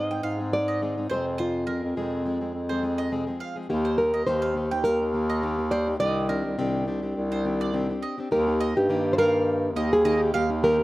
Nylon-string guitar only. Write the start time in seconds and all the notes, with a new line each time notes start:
Already playing: D#5
0.53 D5
1.11 C5
1.40 F4
3.70 G4
3.98 A#4
4.27 C5
4.84 A#4
5.71 D5
6.00 D#5
8.32 A#4
8.77 G4
9.13 C5
9.18 A#4
9.93 G#4
10.35 G4
10.64 A#4